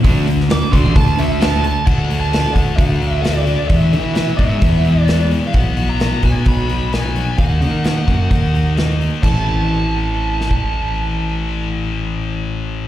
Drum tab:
CC |----------------|x---------------|----------------|----------------|
HH |o-o-o-o-o-o-o-o-|--o-o-o-o-o-o-o-|o-o-o-o-o-o-o-o-|o-o-o-o-o-o-o-o-|
SD |---oo-------o---|----o-------o---|----o-------o---|----o-------o---|
BD |o-----o-o-------|o-----o-o-------|o-----o-o-------|o-----o-o-------|

CC |----------------|x---------------|----------------|
HH |o-o-o-o-o-o-o-o-|----------------|----------------|
SD |----o-------o---|----------o-----|----------------|
BD |o-----o-o-------|o----------o----|----------------|